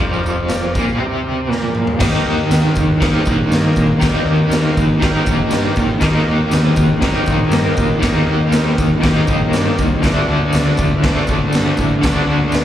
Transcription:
Already playing: G4
0.00 F1 F2 F3 A#4 D5, kick, tambourine
0.14 tambourine
0.24 floor tom, tambourine
0.49 G4 A#4 D5, snare, floor tom, tambourine
0.63 tambourine
0.74 A#1 A#2 A#3, kick, floor tom, tambourine
0.89 tambourine
0.99 C3 C4 G4 A#4 D5
1.24 G4 A#4 D5
1.48 A#2 A#3 G4 A#4 D5, snare
1.63 high tom
1.75 mid tom
1.87 floor tom
1.98 D#2 D#3 A#3 G4 A#4 D#5, kick, snare, crash, tambourine
2.04 D#4
2.26 D#2
2.50 D#2 G4 A#4 D#5, snare, tambourine, crash
2.75 D#2, kick, tambourine
3.00 D#2 D#3 A#3 G4 A#4 D#5, kick, snare, crash
3.05 D#4
3.25 A#1, kick, tambourine
3.49 G2, tambourine, crash
3.53 G4 A#4 D#5, snare
3.76 A#2, kick, tambourine
3.99 D#2 D#3 A#3 G4 A#4 D5, kick, tambourine, crash
4.03 D#4, snare
4.25 D#2
4.50 D#2 G4, snare, tambourine, crash
4.54 A#4 F5
4.77 D#2, kick, tambourine
5.00 D#2 D#3 A#3 G4 A#4 F5, kick, snare, crash
5.05 D#4
5.26 A#1, kick, tambourine
5.49 G2 G4 A#4 D5, snare, tambourine, crash
5.76 A#2, kick, tambourine
5.99 D#2 D#3 A#3 G4 A#4 D#5, kick, snare, tambourine, crash
6.05 D#4
6.28 D#2
6.51 D#2 G4 A#4 D#5, snare, tambourine, crash
6.76 D#2, kick, tambourine
7.01 D#2 D#3 A#3 G4 A#4 D#5, kick, snare, crash
7.06 D#4
7.26 A#1, kick, tambourine
7.50 G2 G4 A#4, snare, tambourine, crash
7.54 D#5
7.77 A#2, kick, tambourine
8.00 D#2 D#3 A#3 G4 A#4 D#5, kick, snare, tambourine, crash
8.06 D#4
8.26 D#2
8.51 D#2 G4 A#4 D#5, snare, tambourine, crash
8.78 D#2, kick, tambourine
9.00 D#2 D#3 A#3 G4 A#4 D#5, kick, tambourine, crash
9.05 D#4, snare
9.27 A#1, kick, tambourine
9.51 G2 G4 A#4 D5, snare, tambourine, crash
9.78 C2, kick, tambourine
10.01 D2 D3 A3 F#4 A4 D5, kick, snare, tambourine, crash
10.07 D4
10.28 D2
10.51 D2 F#4 A4 D5, tambourine, crash
10.55 snare
10.77 D2, kick, tambourine
11.01 D2 D3 A3 F#4 A4 C5, kick, snare, crash
11.07 D4
11.27 A1, kick, tambourine
11.51 G2 F#4 A4 C5, tambourine, crash
11.55 snare
11.77 A2, kick, tambourine
12.00 D2 D3 F#4 A4 D5, kick, tambourine, crash
12.04 A3 D4, snare
12.27 D2
12.52 D2 F#4 A4 D5, snare, tambourine, crash

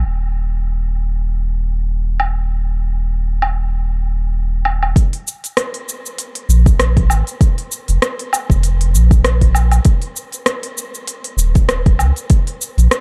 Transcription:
0.06 D#1
2.20 low woodblock
3.42 low woodblock
4.65 low woodblock
4.83 low woodblock
4.96 kick, open hi-hat, cabasa
5.13 open hi-hat
5.28 cabasa
5.44 open hi-hat, cabasa
5.57 cross-stick, open hi-hat, cabasa
5.74 open hi-hat
5.89 cabasa
6.06 cabasa
6.18 open hi-hat, cabasa
6.35 open hi-hat
6.49 A#1, cabasa
6.66 kick, open hi-hat, cabasa
6.79 A#1, cross-stick, open hi-hat, cabasa
6.97 kick, open hi-hat
7.10 G#1, cabasa, low woodblock
7.27 open hi-hat, cabasa
7.41 kick, open hi-hat, cabasa
7.58 open hi-hat
7.72 cabasa
7.88 F1, open hi-hat, cabasa
8.02 cross-stick, open hi-hat, cabasa
8.19 open hi-hat
8.33 cabasa, low woodblock
8.50 F1, kick, cabasa
8.63 open hi-hat, cabasa
8.81 open hi-hat
8.93 A#1, cabasa
9.11 kick, open hi-hat, cabasa
9.25 cross-stick, open hi-hat, cabasa
9.41 kick, open hi-hat
9.55 cabasa, low woodblock
9.71 open hi-hat, cabasa, low woodblock
9.85 kick, open hi-hat, cabasa
10.02 open hi-hat
10.16 cabasa
10.32 open hi-hat, cabasa
10.46 cross-stick, open hi-hat, cabasa
10.63 open hi-hat
10.78 cabasa
10.95 cabasa
11.08 open hi-hat, cabasa
11.24 open hi-hat
11.37 D#1, cabasa
11.55 kick, open hi-hat, cabasa
11.68 D#1, cross-stick, open hi-hat, cabasa
11.86 kick, open hi-hat
11.99 C#2, cabasa, low woodblock
12.16 open hi-hat, cabasa
12.30 kick, open hi-hat, cabasa
12.47 open hi-hat
12.61 cabasa
12.78 A#1, open hi-hat, cabasa
12.91 cross-stick, open hi-hat, cabasa

